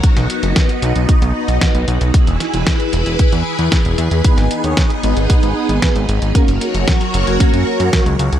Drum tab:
HH |xxxxxxxxxx-xxxxx|xxxxxxxxxx-xxxxx|xxxxxxxxxx-xxxxx|xxxxxxxxxx-xxxxx|
SD |-o--o-------o---|--o-o-------o---|-o--o-------o---|----o-------o---|
BD |o---o---o---o---|o---o---o---o---|o---o---o---o---|o---o---o---o---|